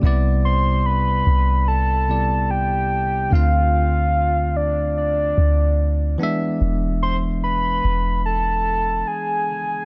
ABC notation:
X:1
M:4/4
L:1/8
Q:1/4=73
K:C
V:1 name="Soft synth lead"
z c' b2 a2 g2 | f3 d d3 z | z c' b2 a2 ^g2 |]
V:2 name="Tine electric piano"
[C,G,B,Ed]4- [C,G,B,Ed] [C,G,B,Ed]3 | [D,A,CFf]6- [D,A,CFf] [E,^G,B,De]- | [E,^G,B,De]6- [E,G,B,De] z |]
V:3 name="808-style bass" clef=bass
C,,3 C,,4- C,, | D,,4- D,, D,,2 z | E,,,3 E,,,3 z2 |]